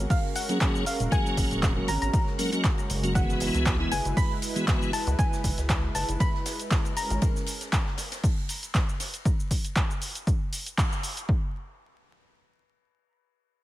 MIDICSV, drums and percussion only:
0, 0, Header, 1, 2, 480
1, 0, Start_track
1, 0, Tempo, 508475
1, 1055, Time_signature, 4, 2, 24, 8
1, 12872, End_track
2, 0, Start_track
2, 0, Title_t, "Drums"
2, 95, Note_on_c, 9, 36, 127
2, 96, Note_on_c, 9, 42, 54
2, 96, Note_on_c, 9, 46, 84
2, 103, Note_on_c, 9, 82, 44
2, 190, Note_off_c, 9, 36, 0
2, 190, Note_off_c, 9, 42, 0
2, 191, Note_off_c, 9, 46, 0
2, 197, Note_off_c, 9, 82, 0
2, 334, Note_on_c, 9, 51, 70
2, 336, Note_on_c, 9, 46, 111
2, 343, Note_on_c, 9, 82, 76
2, 428, Note_off_c, 9, 51, 0
2, 430, Note_off_c, 9, 46, 0
2, 438, Note_off_c, 9, 82, 0
2, 463, Note_on_c, 9, 38, 42
2, 465, Note_on_c, 9, 42, 67
2, 473, Note_on_c, 9, 82, 34
2, 557, Note_off_c, 9, 38, 0
2, 560, Note_off_c, 9, 42, 0
2, 567, Note_off_c, 9, 82, 0
2, 575, Note_on_c, 9, 36, 124
2, 575, Note_on_c, 9, 38, 120
2, 576, Note_on_c, 9, 42, 51
2, 576, Note_on_c, 9, 51, 98
2, 577, Note_on_c, 9, 39, 120
2, 583, Note_on_c, 9, 82, 43
2, 670, Note_off_c, 9, 36, 0
2, 670, Note_off_c, 9, 38, 0
2, 670, Note_off_c, 9, 42, 0
2, 671, Note_off_c, 9, 39, 0
2, 671, Note_off_c, 9, 51, 0
2, 678, Note_off_c, 9, 82, 0
2, 713, Note_on_c, 9, 82, 30
2, 808, Note_off_c, 9, 82, 0
2, 808, Note_on_c, 9, 38, 58
2, 816, Note_on_c, 9, 46, 109
2, 817, Note_on_c, 9, 51, 70
2, 823, Note_on_c, 9, 82, 75
2, 902, Note_off_c, 9, 38, 0
2, 910, Note_off_c, 9, 46, 0
2, 912, Note_off_c, 9, 51, 0
2, 918, Note_off_c, 9, 82, 0
2, 946, Note_on_c, 9, 42, 66
2, 953, Note_on_c, 9, 82, 33
2, 1040, Note_off_c, 9, 42, 0
2, 1047, Note_off_c, 9, 82, 0
2, 1056, Note_on_c, 9, 36, 127
2, 1056, Note_on_c, 9, 42, 49
2, 1056, Note_on_c, 9, 51, 86
2, 1063, Note_on_c, 9, 82, 45
2, 1150, Note_off_c, 9, 36, 0
2, 1150, Note_off_c, 9, 42, 0
2, 1150, Note_off_c, 9, 51, 0
2, 1158, Note_off_c, 9, 82, 0
2, 1184, Note_on_c, 9, 38, 53
2, 1194, Note_on_c, 9, 82, 31
2, 1279, Note_off_c, 9, 38, 0
2, 1288, Note_off_c, 9, 82, 0
2, 1295, Note_on_c, 9, 51, 62
2, 1296, Note_on_c, 9, 36, 65
2, 1296, Note_on_c, 9, 46, 108
2, 1304, Note_on_c, 9, 82, 78
2, 1390, Note_off_c, 9, 36, 0
2, 1390, Note_off_c, 9, 51, 0
2, 1391, Note_off_c, 9, 46, 0
2, 1398, Note_off_c, 9, 82, 0
2, 1426, Note_on_c, 9, 42, 66
2, 1427, Note_on_c, 9, 38, 49
2, 1433, Note_on_c, 9, 82, 34
2, 1520, Note_off_c, 9, 42, 0
2, 1521, Note_off_c, 9, 38, 0
2, 1528, Note_off_c, 9, 82, 0
2, 1533, Note_on_c, 9, 38, 111
2, 1535, Note_on_c, 9, 36, 120
2, 1536, Note_on_c, 9, 42, 52
2, 1537, Note_on_c, 9, 39, 118
2, 1537, Note_on_c, 9, 51, 85
2, 1543, Note_on_c, 9, 82, 43
2, 1627, Note_off_c, 9, 38, 0
2, 1630, Note_off_c, 9, 36, 0
2, 1630, Note_off_c, 9, 42, 0
2, 1631, Note_off_c, 9, 39, 0
2, 1631, Note_off_c, 9, 51, 0
2, 1638, Note_off_c, 9, 82, 0
2, 1772, Note_on_c, 9, 51, 67
2, 1775, Note_on_c, 9, 46, 111
2, 1783, Note_on_c, 9, 82, 75
2, 1867, Note_off_c, 9, 51, 0
2, 1870, Note_off_c, 9, 46, 0
2, 1877, Note_off_c, 9, 82, 0
2, 1905, Note_on_c, 9, 42, 65
2, 1913, Note_on_c, 9, 82, 33
2, 2000, Note_off_c, 9, 42, 0
2, 2007, Note_off_c, 9, 82, 0
2, 2015, Note_on_c, 9, 36, 126
2, 2015, Note_on_c, 9, 51, 90
2, 2016, Note_on_c, 9, 42, 54
2, 2023, Note_on_c, 9, 82, 45
2, 2109, Note_off_c, 9, 51, 0
2, 2110, Note_off_c, 9, 36, 0
2, 2110, Note_off_c, 9, 42, 0
2, 2117, Note_off_c, 9, 82, 0
2, 2140, Note_on_c, 9, 38, 42
2, 2235, Note_off_c, 9, 38, 0
2, 2255, Note_on_c, 9, 51, 71
2, 2256, Note_on_c, 9, 46, 113
2, 2263, Note_on_c, 9, 82, 77
2, 2350, Note_off_c, 9, 46, 0
2, 2350, Note_off_c, 9, 51, 0
2, 2357, Note_off_c, 9, 82, 0
2, 2385, Note_on_c, 9, 42, 67
2, 2393, Note_on_c, 9, 82, 34
2, 2480, Note_off_c, 9, 42, 0
2, 2487, Note_off_c, 9, 82, 0
2, 2491, Note_on_c, 9, 38, 119
2, 2491, Note_on_c, 9, 51, 83
2, 2496, Note_on_c, 9, 36, 126
2, 2496, Note_on_c, 9, 39, 119
2, 2496, Note_on_c, 9, 42, 50
2, 2503, Note_on_c, 9, 82, 43
2, 2585, Note_off_c, 9, 38, 0
2, 2586, Note_off_c, 9, 51, 0
2, 2590, Note_off_c, 9, 36, 0
2, 2590, Note_off_c, 9, 42, 0
2, 2591, Note_off_c, 9, 39, 0
2, 2597, Note_off_c, 9, 82, 0
2, 2623, Note_on_c, 9, 51, 43
2, 2633, Note_on_c, 9, 82, 30
2, 2717, Note_off_c, 9, 51, 0
2, 2727, Note_off_c, 9, 82, 0
2, 2736, Note_on_c, 9, 46, 106
2, 2736, Note_on_c, 9, 51, 65
2, 2743, Note_on_c, 9, 82, 75
2, 2830, Note_off_c, 9, 46, 0
2, 2830, Note_off_c, 9, 51, 0
2, 2837, Note_off_c, 9, 82, 0
2, 2865, Note_on_c, 9, 42, 63
2, 2873, Note_on_c, 9, 82, 33
2, 2960, Note_off_c, 9, 42, 0
2, 2967, Note_off_c, 9, 82, 0
2, 2975, Note_on_c, 9, 36, 127
2, 2976, Note_on_c, 9, 42, 50
2, 2977, Note_on_c, 9, 51, 92
2, 2983, Note_on_c, 9, 82, 46
2, 3070, Note_off_c, 9, 36, 0
2, 3070, Note_off_c, 9, 42, 0
2, 3071, Note_off_c, 9, 51, 0
2, 3077, Note_off_c, 9, 82, 0
2, 3103, Note_on_c, 9, 38, 50
2, 3113, Note_on_c, 9, 82, 32
2, 3197, Note_off_c, 9, 38, 0
2, 3207, Note_off_c, 9, 82, 0
2, 3210, Note_on_c, 9, 51, 72
2, 3216, Note_on_c, 9, 46, 108
2, 3223, Note_on_c, 9, 82, 80
2, 3304, Note_off_c, 9, 51, 0
2, 3310, Note_off_c, 9, 46, 0
2, 3317, Note_off_c, 9, 82, 0
2, 3346, Note_on_c, 9, 38, 46
2, 3346, Note_on_c, 9, 42, 65
2, 3353, Note_on_c, 9, 82, 34
2, 3440, Note_off_c, 9, 42, 0
2, 3441, Note_off_c, 9, 38, 0
2, 3447, Note_off_c, 9, 82, 0
2, 3454, Note_on_c, 9, 51, 88
2, 3455, Note_on_c, 9, 36, 119
2, 3456, Note_on_c, 9, 39, 119
2, 3456, Note_on_c, 9, 42, 53
2, 3460, Note_on_c, 9, 38, 110
2, 3463, Note_on_c, 9, 82, 46
2, 3548, Note_off_c, 9, 51, 0
2, 3550, Note_off_c, 9, 36, 0
2, 3550, Note_off_c, 9, 42, 0
2, 3551, Note_off_c, 9, 39, 0
2, 3554, Note_off_c, 9, 38, 0
2, 3557, Note_off_c, 9, 82, 0
2, 3580, Note_on_c, 9, 38, 44
2, 3675, Note_off_c, 9, 38, 0
2, 3696, Note_on_c, 9, 46, 103
2, 3697, Note_on_c, 9, 51, 76
2, 3704, Note_on_c, 9, 82, 77
2, 3791, Note_off_c, 9, 46, 0
2, 3791, Note_off_c, 9, 51, 0
2, 3798, Note_off_c, 9, 82, 0
2, 3826, Note_on_c, 9, 42, 63
2, 3834, Note_on_c, 9, 82, 34
2, 3921, Note_off_c, 9, 42, 0
2, 3928, Note_off_c, 9, 82, 0
2, 3936, Note_on_c, 9, 36, 123
2, 3936, Note_on_c, 9, 42, 53
2, 3936, Note_on_c, 9, 46, 83
2, 3944, Note_on_c, 9, 82, 46
2, 4030, Note_off_c, 9, 36, 0
2, 4031, Note_off_c, 9, 42, 0
2, 4031, Note_off_c, 9, 46, 0
2, 4038, Note_off_c, 9, 82, 0
2, 4172, Note_on_c, 9, 51, 70
2, 4176, Note_on_c, 9, 46, 105
2, 4183, Note_on_c, 9, 82, 81
2, 4267, Note_off_c, 9, 51, 0
2, 4270, Note_off_c, 9, 46, 0
2, 4278, Note_off_c, 9, 82, 0
2, 4303, Note_on_c, 9, 38, 46
2, 4306, Note_on_c, 9, 42, 67
2, 4313, Note_on_c, 9, 82, 36
2, 4398, Note_off_c, 9, 38, 0
2, 4400, Note_off_c, 9, 42, 0
2, 4407, Note_off_c, 9, 82, 0
2, 4413, Note_on_c, 9, 51, 100
2, 4416, Note_on_c, 9, 36, 124
2, 4416, Note_on_c, 9, 42, 51
2, 4417, Note_on_c, 9, 39, 118
2, 4418, Note_on_c, 9, 38, 116
2, 4423, Note_on_c, 9, 82, 46
2, 4508, Note_off_c, 9, 51, 0
2, 4510, Note_off_c, 9, 36, 0
2, 4510, Note_off_c, 9, 42, 0
2, 4511, Note_off_c, 9, 39, 0
2, 4513, Note_off_c, 9, 38, 0
2, 4518, Note_off_c, 9, 82, 0
2, 4553, Note_on_c, 9, 82, 33
2, 4647, Note_off_c, 9, 82, 0
2, 4654, Note_on_c, 9, 38, 56
2, 4654, Note_on_c, 9, 51, 72
2, 4656, Note_on_c, 9, 46, 103
2, 4663, Note_on_c, 9, 82, 78
2, 4748, Note_off_c, 9, 51, 0
2, 4749, Note_off_c, 9, 38, 0
2, 4750, Note_off_c, 9, 46, 0
2, 4758, Note_off_c, 9, 82, 0
2, 4786, Note_on_c, 9, 42, 62
2, 4793, Note_on_c, 9, 82, 34
2, 4880, Note_off_c, 9, 42, 0
2, 4887, Note_off_c, 9, 82, 0
2, 4896, Note_on_c, 9, 36, 120
2, 4896, Note_on_c, 9, 42, 53
2, 4897, Note_on_c, 9, 51, 85
2, 4904, Note_on_c, 9, 82, 48
2, 4990, Note_off_c, 9, 36, 0
2, 4991, Note_off_c, 9, 42, 0
2, 4991, Note_off_c, 9, 51, 0
2, 4998, Note_off_c, 9, 82, 0
2, 5026, Note_on_c, 9, 38, 55
2, 5033, Note_on_c, 9, 82, 33
2, 5121, Note_off_c, 9, 38, 0
2, 5128, Note_off_c, 9, 82, 0
2, 5135, Note_on_c, 9, 46, 104
2, 5135, Note_on_c, 9, 51, 67
2, 5136, Note_on_c, 9, 36, 58
2, 5143, Note_on_c, 9, 82, 82
2, 5229, Note_off_c, 9, 51, 0
2, 5230, Note_off_c, 9, 36, 0
2, 5230, Note_off_c, 9, 46, 0
2, 5237, Note_off_c, 9, 82, 0
2, 5266, Note_on_c, 9, 42, 65
2, 5269, Note_on_c, 9, 38, 51
2, 5273, Note_on_c, 9, 82, 36
2, 5360, Note_off_c, 9, 42, 0
2, 5364, Note_off_c, 9, 38, 0
2, 5367, Note_off_c, 9, 82, 0
2, 5370, Note_on_c, 9, 38, 127
2, 5376, Note_on_c, 9, 36, 119
2, 5376, Note_on_c, 9, 42, 55
2, 5376, Note_on_c, 9, 51, 91
2, 5377, Note_on_c, 9, 39, 116
2, 5383, Note_on_c, 9, 82, 49
2, 5464, Note_off_c, 9, 38, 0
2, 5470, Note_off_c, 9, 36, 0
2, 5470, Note_off_c, 9, 42, 0
2, 5471, Note_off_c, 9, 39, 0
2, 5471, Note_off_c, 9, 51, 0
2, 5478, Note_off_c, 9, 82, 0
2, 5616, Note_on_c, 9, 46, 102
2, 5623, Note_on_c, 9, 82, 82
2, 5625, Note_on_c, 9, 51, 71
2, 5711, Note_off_c, 9, 46, 0
2, 5718, Note_off_c, 9, 82, 0
2, 5719, Note_off_c, 9, 51, 0
2, 5746, Note_on_c, 9, 42, 66
2, 5753, Note_on_c, 9, 82, 35
2, 5840, Note_off_c, 9, 42, 0
2, 5847, Note_off_c, 9, 82, 0
2, 5855, Note_on_c, 9, 36, 121
2, 5856, Note_on_c, 9, 42, 55
2, 5856, Note_on_c, 9, 51, 94
2, 5863, Note_on_c, 9, 82, 47
2, 5950, Note_off_c, 9, 36, 0
2, 5950, Note_off_c, 9, 42, 0
2, 5951, Note_off_c, 9, 51, 0
2, 5958, Note_off_c, 9, 82, 0
2, 5989, Note_on_c, 9, 38, 42
2, 6084, Note_off_c, 9, 38, 0
2, 6096, Note_on_c, 9, 38, 114
2, 6096, Note_on_c, 9, 46, 107
2, 6096, Note_on_c, 9, 51, 81
2, 6103, Note_on_c, 9, 82, 85
2, 6190, Note_off_c, 9, 38, 0
2, 6190, Note_off_c, 9, 46, 0
2, 6191, Note_off_c, 9, 51, 0
2, 6198, Note_off_c, 9, 82, 0
2, 6226, Note_on_c, 9, 42, 67
2, 6233, Note_on_c, 9, 82, 37
2, 6320, Note_off_c, 9, 42, 0
2, 6328, Note_off_c, 9, 82, 0
2, 6329, Note_on_c, 9, 51, 84
2, 6335, Note_on_c, 9, 36, 121
2, 6335, Note_on_c, 9, 42, 54
2, 6336, Note_on_c, 9, 39, 115
2, 6339, Note_on_c, 9, 38, 121
2, 6343, Note_on_c, 9, 82, 47
2, 6424, Note_off_c, 9, 51, 0
2, 6430, Note_off_c, 9, 36, 0
2, 6430, Note_off_c, 9, 42, 0
2, 6431, Note_off_c, 9, 39, 0
2, 6433, Note_off_c, 9, 38, 0
2, 6437, Note_off_c, 9, 82, 0
2, 6464, Note_on_c, 9, 51, 42
2, 6473, Note_on_c, 9, 82, 33
2, 6558, Note_off_c, 9, 51, 0
2, 6567, Note_off_c, 9, 82, 0
2, 6574, Note_on_c, 9, 51, 72
2, 6575, Note_on_c, 9, 46, 104
2, 6583, Note_on_c, 9, 82, 82
2, 6669, Note_off_c, 9, 51, 0
2, 6670, Note_off_c, 9, 46, 0
2, 6677, Note_off_c, 9, 82, 0
2, 6705, Note_on_c, 9, 42, 66
2, 6713, Note_on_c, 9, 82, 36
2, 6800, Note_off_c, 9, 42, 0
2, 6807, Note_off_c, 9, 82, 0
2, 6812, Note_on_c, 9, 51, 95
2, 6815, Note_on_c, 9, 36, 119
2, 6815, Note_on_c, 9, 42, 56
2, 6823, Note_on_c, 9, 82, 48
2, 6906, Note_off_c, 9, 51, 0
2, 6910, Note_off_c, 9, 36, 0
2, 6910, Note_off_c, 9, 42, 0
2, 6917, Note_off_c, 9, 82, 0
2, 6946, Note_on_c, 9, 38, 50
2, 6952, Note_on_c, 9, 82, 33
2, 7040, Note_off_c, 9, 38, 0
2, 7045, Note_on_c, 9, 51, 68
2, 7046, Note_off_c, 9, 82, 0
2, 7055, Note_on_c, 9, 46, 99
2, 7062, Note_on_c, 9, 82, 86
2, 7140, Note_off_c, 9, 51, 0
2, 7149, Note_off_c, 9, 46, 0
2, 7157, Note_off_c, 9, 82, 0
2, 7184, Note_on_c, 9, 38, 54
2, 7185, Note_on_c, 9, 42, 71
2, 7192, Note_on_c, 9, 82, 36
2, 7278, Note_off_c, 9, 38, 0
2, 7279, Note_off_c, 9, 42, 0
2, 7286, Note_off_c, 9, 82, 0
2, 7293, Note_on_c, 9, 51, 85
2, 7295, Note_on_c, 9, 36, 113
2, 7295, Note_on_c, 9, 38, 119
2, 7295, Note_on_c, 9, 42, 56
2, 7296, Note_on_c, 9, 39, 120
2, 7302, Note_on_c, 9, 82, 50
2, 7387, Note_off_c, 9, 51, 0
2, 7389, Note_off_c, 9, 42, 0
2, 7390, Note_off_c, 9, 36, 0
2, 7390, Note_off_c, 9, 38, 0
2, 7390, Note_off_c, 9, 39, 0
2, 7397, Note_off_c, 9, 82, 0
2, 7423, Note_on_c, 9, 38, 44
2, 7518, Note_off_c, 9, 38, 0
2, 7529, Note_on_c, 9, 38, 109
2, 7529, Note_on_c, 9, 51, 75
2, 7535, Note_on_c, 9, 46, 100
2, 7542, Note_on_c, 9, 82, 80
2, 7623, Note_off_c, 9, 38, 0
2, 7624, Note_off_c, 9, 51, 0
2, 7630, Note_off_c, 9, 46, 0
2, 7637, Note_off_c, 9, 82, 0
2, 7661, Note_on_c, 9, 38, 116
2, 7665, Note_on_c, 9, 42, 69
2, 7665, Note_on_c, 9, 51, 79
2, 7672, Note_on_c, 9, 82, 36
2, 7756, Note_off_c, 9, 38, 0
2, 7759, Note_off_c, 9, 42, 0
2, 7759, Note_off_c, 9, 51, 0
2, 7766, Note_off_c, 9, 82, 0
2, 7775, Note_on_c, 9, 36, 119
2, 7775, Note_on_c, 9, 42, 58
2, 7781, Note_on_c, 9, 46, 92
2, 7783, Note_on_c, 9, 82, 50
2, 7870, Note_off_c, 9, 36, 0
2, 7870, Note_off_c, 9, 42, 0
2, 7876, Note_off_c, 9, 46, 0
2, 7877, Note_off_c, 9, 82, 0
2, 8013, Note_on_c, 9, 51, 69
2, 8015, Note_on_c, 9, 46, 104
2, 8022, Note_on_c, 9, 82, 86
2, 8107, Note_off_c, 9, 51, 0
2, 8110, Note_off_c, 9, 46, 0
2, 8117, Note_off_c, 9, 82, 0
2, 8146, Note_on_c, 9, 42, 72
2, 8153, Note_on_c, 9, 82, 37
2, 8240, Note_off_c, 9, 42, 0
2, 8247, Note_off_c, 9, 82, 0
2, 8254, Note_on_c, 9, 51, 85
2, 8255, Note_on_c, 9, 42, 54
2, 8256, Note_on_c, 9, 36, 117
2, 8256, Note_on_c, 9, 39, 122
2, 8257, Note_on_c, 9, 38, 113
2, 8263, Note_on_c, 9, 82, 47
2, 8349, Note_off_c, 9, 51, 0
2, 8350, Note_off_c, 9, 36, 0
2, 8350, Note_off_c, 9, 42, 0
2, 8351, Note_off_c, 9, 39, 0
2, 8352, Note_off_c, 9, 38, 0
2, 8357, Note_off_c, 9, 82, 0
2, 8393, Note_on_c, 9, 82, 34
2, 8487, Note_off_c, 9, 82, 0
2, 8495, Note_on_c, 9, 38, 106
2, 8495, Note_on_c, 9, 46, 98
2, 8496, Note_on_c, 9, 51, 81
2, 8503, Note_on_c, 9, 82, 82
2, 8589, Note_off_c, 9, 38, 0
2, 8590, Note_off_c, 9, 46, 0
2, 8590, Note_off_c, 9, 51, 0
2, 8597, Note_off_c, 9, 82, 0
2, 8625, Note_on_c, 9, 42, 68
2, 8632, Note_on_c, 9, 82, 36
2, 8719, Note_off_c, 9, 42, 0
2, 8727, Note_off_c, 9, 82, 0
2, 8736, Note_on_c, 9, 36, 120
2, 8736, Note_on_c, 9, 42, 55
2, 8743, Note_on_c, 9, 82, 46
2, 8830, Note_off_c, 9, 36, 0
2, 8830, Note_off_c, 9, 42, 0
2, 8837, Note_off_c, 9, 82, 0
2, 8873, Note_on_c, 9, 82, 33
2, 8967, Note_off_c, 9, 82, 0
2, 8976, Note_on_c, 9, 36, 60
2, 8976, Note_on_c, 9, 46, 105
2, 8983, Note_on_c, 9, 82, 84
2, 9070, Note_off_c, 9, 36, 0
2, 9070, Note_off_c, 9, 46, 0
2, 9077, Note_off_c, 9, 82, 0
2, 9105, Note_on_c, 9, 42, 71
2, 9113, Note_on_c, 9, 82, 35
2, 9200, Note_off_c, 9, 42, 0
2, 9207, Note_off_c, 9, 82, 0
2, 9216, Note_on_c, 9, 36, 113
2, 9216, Note_on_c, 9, 42, 58
2, 9217, Note_on_c, 9, 39, 122
2, 9223, Note_on_c, 9, 82, 49
2, 9310, Note_off_c, 9, 36, 0
2, 9310, Note_off_c, 9, 42, 0
2, 9311, Note_off_c, 9, 39, 0
2, 9318, Note_off_c, 9, 82, 0
2, 9353, Note_on_c, 9, 82, 32
2, 9447, Note_off_c, 9, 82, 0
2, 9456, Note_on_c, 9, 46, 102
2, 9463, Note_on_c, 9, 82, 78
2, 9550, Note_off_c, 9, 46, 0
2, 9557, Note_off_c, 9, 82, 0
2, 9586, Note_on_c, 9, 42, 72
2, 9593, Note_on_c, 9, 82, 35
2, 9680, Note_off_c, 9, 42, 0
2, 9687, Note_off_c, 9, 82, 0
2, 9696, Note_on_c, 9, 36, 118
2, 9696, Note_on_c, 9, 42, 57
2, 9703, Note_on_c, 9, 82, 47
2, 9790, Note_off_c, 9, 36, 0
2, 9790, Note_off_c, 9, 42, 0
2, 9797, Note_off_c, 9, 82, 0
2, 9936, Note_on_c, 9, 46, 109
2, 9943, Note_on_c, 9, 82, 85
2, 10030, Note_off_c, 9, 46, 0
2, 10038, Note_off_c, 9, 82, 0
2, 10066, Note_on_c, 9, 42, 72
2, 10074, Note_on_c, 9, 82, 36
2, 10161, Note_off_c, 9, 42, 0
2, 10168, Note_off_c, 9, 82, 0
2, 10176, Note_on_c, 9, 36, 121
2, 10177, Note_on_c, 9, 42, 55
2, 10178, Note_on_c, 9, 39, 123
2, 10184, Note_on_c, 9, 82, 48
2, 10270, Note_off_c, 9, 36, 0
2, 10271, Note_off_c, 9, 42, 0
2, 10272, Note_off_c, 9, 39, 0
2, 10278, Note_off_c, 9, 82, 0
2, 10313, Note_on_c, 9, 82, 33
2, 10407, Note_off_c, 9, 82, 0
2, 10416, Note_on_c, 9, 46, 103
2, 10423, Note_on_c, 9, 82, 81
2, 10510, Note_off_c, 9, 46, 0
2, 10518, Note_off_c, 9, 82, 0
2, 10546, Note_on_c, 9, 42, 71
2, 10553, Note_on_c, 9, 82, 36
2, 10640, Note_off_c, 9, 42, 0
2, 10647, Note_off_c, 9, 82, 0
2, 10656, Note_on_c, 9, 36, 117
2, 10750, Note_off_c, 9, 36, 0
2, 12872, End_track
0, 0, End_of_file